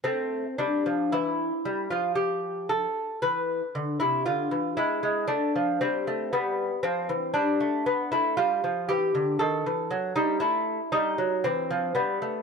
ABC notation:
X:1
M:3/4
L:1/16
Q:1/4=58
K:Am
V:1 name="Lute"
C2 D2 E3 F G2 A2 | B3 E F2 E2 D2 C2 | B,2 C2 D3 E F2 G2 | A3 ^D E2 D2 C2 B,2 |]
V:2 name="Lute" clef=bass
A,2 G, F, E,2 G, F,4- F, | E,2 D, C, D, E, ^G, G, A, F, =G, A, | G,2 F, E, G, A, B, A, G, F, E, D, | ^D, E, ^F, G, A,2 G, F, E, =F, G, A, |]